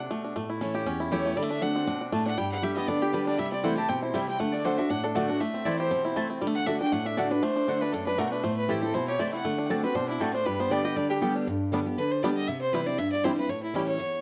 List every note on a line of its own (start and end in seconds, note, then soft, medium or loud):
0.00 0.10 A3 medium
0.00 0.23 D4 medium
0.10 0.35 B2 medium
0.10 0.35 A3 medium
0.24 0.36 D4 medium
0.36 0.84 A2 medium
0.36 0.72 A3 medium
0.50 0.84 E4 soft
0.61 0.85 E3 medium
0.61 0.85 A3 medium
0.61 0.85 C#4 medium
0.61 0.86 C#4 medium
0.61 0.86 E4 medium
0.75 1.09 G4 medium
0.86 1.34 E2 loud
0.86 1.23 C#4 medium
1.00 1.34 E4 medium
1.11 1.35 E3 medium
1.11 1.36 A3 medium
1.11 1.36 C#4 loud
1.11 1.36 E4 loud
1.11 1.37 G4 medium
1.11 1.38 C#5 medium
1.25 1.36 A3 medium
1.37 1.60 D3 medium
1.37 1.42 G3 medium
1.37 1.50 D5 medium
1.42 1.62 A3 medium
1.50 1.61 D4 medium
1.50 1.64 E5 loud
1.61 1.86 D3 medium
1.61 1.86 A3 medium
1.61 1.86 C4 medium
1.61 1.86 D4 medium
1.61 1.86 F#4 medium
1.61 2.01 F#5 medium
1.76 2.10 C4 medium
1.87 2.11 B2 loud
1.87 2.00 D4 medium
2.01 2.25 D4 medium
2.12 2.36 A2 medium
2.12 2.37 A3 medium
2.12 2.26 A5 medium
2.26 2.38 D4 medium
2.26 2.39 F#5 medium
2.37 2.86 G2 medium
2.37 2.74 G3 medium
2.37 2.51 G5 loud
2.52 2.65 F#5 medium
2.62 2.76 D3 medium
2.62 2.76 G3 medium
2.62 2.76 B3 medium
2.62 2.99 G4 medium
2.62 2.75 G4 medium
2.62 2.76 E5 medium
2.76 3.11 B3 medium
2.76 2.88 B3 medium
2.76 2.87 G4 medium
2.76 2.89 D#5 medium
2.88 3.11 D3 medium
2.88 3.25 D4 medium
2.88 3.03 D5 medium
3.02 3.15 G4 medium
3.02 3.37 G4 medium
3.13 3.37 D3 medium
3.13 3.37 G3 medium
3.13 3.38 B3 medium
3.13 3.38 G4 loud
3.13 3.26 B4 medium
3.27 3.39 D4 medium
3.27 3.40 D5 medium
3.39 3.87 C3 medium
3.39 3.75 G3 medium
3.39 3.52 E5 loud
3.52 3.87 C4 medium
3.52 3.65 D5 medium
3.63 3.77 E3 medium
3.63 3.74 A3 medium
3.63 3.77 A3 medium
3.63 3.77 C4 medium
3.63 3.74 E4 medium
3.63 4.00 E4 medium
3.63 3.76 E4 medium
3.63 3.74 C5 medium
3.63 3.77 F#5 medium
3.63 3.74 G5 loud
3.77 3.89 C4 medium
3.77 3.88 E4 medium
3.77 4.12 G4 medium
3.77 3.90 A5 loud
3.89 4.13 B2 medium
3.89 4.25 C4 medium
3.89 4.02 G5 medium
4.02 4.37 E4 medium
4.02 4.16 C5 medium
4.14 4.39 C3 medium
4.14 4.39 G3 medium
4.14 4.24 A3 medium
4.14 4.24 E4 medium
4.14 4.24 C5 medium
4.14 4.27 E5 medium
4.14 4.24 G5 loud
4.28 4.40 C4 medium
4.28 4.41 G5 medium
4.39 4.63 D3 medium
4.39 5.15 A3 medium
4.39 4.54 F#5 medium
4.53 4.64 D4 medium
4.53 4.66 D5 medium
4.64 4.78 D3 medium
4.64 4.75 A3 medium
4.64 4.78 A3 medium
4.64 4.77 D4 medium
4.64 4.78 D4 medium
4.64 4.75 F#4 medium
4.64 4.77 F#4 medium
4.64 4.79 C5 medium
4.64 4.75 D5 medium
4.64 4.75 F#5 medium
4.78 4.89 D4 medium
4.78 4.90 D4 medium
4.78 4.90 F#4 medium
4.78 4.92 E5 medium
4.90 5.38 A2 medium
4.90 5.03 D4 medium
4.90 5.05 F#5 loud
5.04 5.28 D4 medium
5.04 5.17 A4 medium
5.15 5.29 D3 medium
5.15 5.25 A3 medium
5.15 5.40 A3 medium
5.15 5.29 A3 medium
5.15 5.29 D4 loud
5.15 5.25 F#4 medium
5.15 5.28 F#4 loud
5.15 5.25 D5 loud
5.15 5.30 D5 medium
5.15 5.25 F#5 loud
5.29 5.41 D4 medium
5.29 5.41 D4 soft
5.29 5.40 F#4 medium
5.29 5.42 F#5 loud
5.40 5.89 A2 medium
5.40 5.83 A3 medium
5.40 5.67 E5 medium
5.54 5.89 C4 medium
5.65 5.90 E3 medium
5.65 5.75 A3 medium
5.65 5.90 A3 medium
5.65 5.90 C4 medium
5.65 5.76 E4 medium
5.65 6.02 E4 medium
5.65 5.90 E4 medium
5.65 5.76 C5 medium
5.65 5.79 D5 medium
5.65 5.76 A5 medium
5.79 6.14 G4 medium
5.79 6.14 C5 loud
5.91 6.15 B2 loud
5.91 6.27 C4 medium
6.05 6.39 E4 medium
6.16 6.40 C3 medium
6.16 6.26 A3 medium
6.16 6.41 A3 medium
6.16 6.26 E4 medium
6.16 6.26 C5 medium
6.16 6.27 A5 loud
6.30 6.42 C4 medium
6.41 6.66 D3 medium
6.41 6.47 G3 medium
6.47 6.67 A3 medium
6.55 6.68 F#5 loud
6.67 6.80 D3 medium
6.67 6.77 A3 medium
6.67 6.80 A3 medium
6.67 6.80 D4 medium
6.67 6.81 D4 medium
6.67 6.77 F#4 medium
6.67 6.79 F#4 medium
6.67 6.77 D5 medium
6.67 6.80 E5 medium
6.67 6.77 F#5 medium
6.80 7.04 D4 medium
6.80 6.93 D4 medium
6.80 6.92 F#4 medium
6.80 6.94 G5 loud
6.92 7.41 A2 loud
6.92 7.42 A3 medium
6.92 7.08 F#5 loud
7.06 7.16 D4 medium
7.06 7.20 E5 medium
7.17 7.30 D3 medium
7.17 7.31 A3 medium
7.17 7.27 A3 medium
7.17 7.30 D4 medium
7.17 7.31 D4 medium
7.17 7.28 F#4 medium
7.17 7.30 F#4 medium
7.17 7.33 D5 medium
7.17 7.28 D5 medium
7.17 7.28 F#5 loud
7.31 7.55 D4 medium
7.31 7.43 D4 soft
7.31 7.42 F#4 medium
7.31 7.45 B4 medium
7.43 7.66 D3 medium
7.43 8.18 A3 medium
7.43 7.83 C5 loud
7.56 7.67 D4 medium
7.68 7.92 D3 medium
7.68 7.78 A3 medium
7.68 7.92 A3 medium
7.68 7.81 D4 medium
7.68 7.93 D4 medium
7.68 7.78 F#4 medium
7.68 7.93 F#4 medium
7.68 7.78 D5 medium
7.68 7.78 F#5 medium
7.81 7.92 D4 medium
7.81 7.94 B4 medium
7.93 8.18 F#2 loud
7.93 8.06 D4 medium
7.93 8.06 A4 medium
8.07 8.31 D4 medium
8.07 8.20 B4 loud
8.18 8.43 B2 medium
8.18 8.28 A3 medium
8.18 8.43 A3 medium
8.18 8.28 F#4 medium
8.18 8.31 A#4 medium
8.18 8.29 D5 medium
8.18 8.29 F#5 loud
8.32 8.44 D4 medium
8.32 8.44 B4 medium
8.43 8.92 A2 medium
8.43 8.80 A3 medium
8.43 8.56 C5 medium
8.57 8.70 B4 loud
8.68 8.82 E3 medium
8.68 8.79 A3 medium
8.68 8.82 A3 medium
8.68 8.82 C4 medium
8.68 8.79 E4 loud
8.68 8.81 E4 medium
8.68 8.82 G4 medium
8.68 9.05 G4 medium
8.68 8.79 C5 medium
8.68 8.79 A5 medium
8.82 9.17 C4 medium
8.82 8.94 C4 soft
8.82 8.94 E4 medium
8.82 8.96 A4 loud
8.94 9.19 B2 medium
8.94 9.31 E4 medium
8.94 9.07 C5 medium
9.08 9.43 G4 medium
9.08 9.21 C#5 medium
9.19 9.44 C3 medium
9.19 9.29 A3 medium
9.19 9.44 A3 medium
9.19 9.29 E4 medium
9.19 9.30 C5 medium
9.19 9.33 D5 medium
9.19 9.30 A5 medium
9.33 9.45 E4 medium
9.33 9.68 F#5 medium
9.45 9.69 D3 medium
9.45 9.81 A3 medium
9.58 9.70 D4 medium
9.70 9.83 D3 medium
9.70 9.83 A3 medium
9.70 9.80 C4 medium
9.70 9.84 C4 medium
9.70 9.95 D4 medium
9.70 9.80 F#4 medium
9.70 9.82 F#4 medium
9.70 9.80 D5 medium
9.70 9.80 A5 loud
9.83 10.18 C4 medium
9.83 9.96 C4 soft
9.83 9.95 F#4 medium
9.83 9.97 B4 medium
9.95 10.19 B2 medium
9.95 10.09 D4 medium
9.95 10.08 C5 loud
10.09 10.34 D4 medium
10.09 10.22 E4 medium
10.20 10.45 A2 medium
10.20 10.46 A3 medium
10.20 10.30 C4 medium
10.20 10.31 F#4 medium
10.20 10.33 A4 medium
10.20 10.31 D5 medium
10.20 10.31 A5 loud
10.34 10.71 D4 medium
10.34 10.47 C5 medium
10.45 10.94 G2 medium
10.45 10.82 G3 medium
10.45 10.61 B4 medium
10.60 10.94 B3 medium
10.60 10.73 C5 medium
10.70 10.95 D3 medium
10.70 10.95 G3 medium
10.70 10.81 B3 medium
10.70 10.95 B3 medium
10.70 11.08 D4 medium
10.70 10.81 G4 medium
10.70 10.95 G4 medium
10.70 10.86 D5 medium
10.70 10.81 D5 medium
10.70 10.81 G5 medium
10.85 11.19 G4 medium
10.85 10.98 D#5 medium
10.96 11.20 D3 loud
10.96 11.33 G3 medium
10.96 11.09 D5 loud
11.10 11.35 D4 medium
11.10 11.17 G4 loud
11.21 11.46 D3 medium
11.21 11.46 G3 medium
11.21 11.31 B3 medium
11.21 11.46 B3 medium
11.21 11.32 G4 medium
11.21 11.47 G4 medium
11.21 11.46 G4 medium
11.21 11.32 D5 loud
11.21 11.32 G5 loud
11.36 11.47 D4 medium
11.47 11.95 G2 medium
11.72 11.85 D3 medium
11.72 11.86 G3 medium
11.72 11.79 G3 medium
11.72 11.86 B3 medium
11.72 11.79 B3 medium
11.72 11.79 D4 medium
11.72 11.85 G4 medium
11.86 11.98 B3 medium
11.86 11.97 G4 medium
11.98 12.22 D3 medium
11.98 12.13 B4 medium
12.11 12.24 C5 medium
12.23 12.47 D3 medium
12.23 12.47 G3 medium
12.23 12.29 G3 medium
12.23 12.30 B3 medium
12.23 12.48 B3 loud
12.23 12.30 D4 medium
12.23 12.48 G4 loud
12.23 12.36 D5 medium
12.37 12.49 D#5 medium
12.48 12.97 C3 medium
12.48 12.61 E5 medium
12.61 12.75 C5 medium
12.73 12.86 E3 medium
12.73 12.87 G3 medium
12.73 12.80 G3 medium
12.73 12.87 C4 medium
12.73 12.80 C4 medium
12.73 12.85 E4 medium
12.73 12.80 E4 medium
12.73 12.88 B4 medium
12.86 12.99 C4 medium
12.86 12.98 E4 medium
12.86 13.00 D5 medium
12.98 13.47 G2 loud
12.98 13.12 E5 loud
13.12 13.26 D5 loud
13.24 13.37 E3 medium
13.24 13.37 G3 medium
13.24 13.31 G3 medium
13.24 13.38 C4 medium
13.24 13.31 C4 medium
13.24 13.36 E4 loud
13.24 13.31 E4 medium
13.24 13.37 C5 medium
13.37 13.50 C4 soft
13.37 13.49 E4 medium
13.37 13.51 B4 medium
13.49 13.98 A2 medium
13.49 13.63 C#5 medium
13.63 13.76 E4 medium
13.74 13.98 E3 medium
13.74 13.99 G3 medium
13.74 13.81 G3 medium
13.74 13.99 C#4 medium
13.74 13.81 C#4 medium
13.74 13.99 E4 medium
13.74 13.81 E4 medium
13.74 13.88 G4 medium
13.88 14.21 C#5 medium
13.99 14.21 E2 medium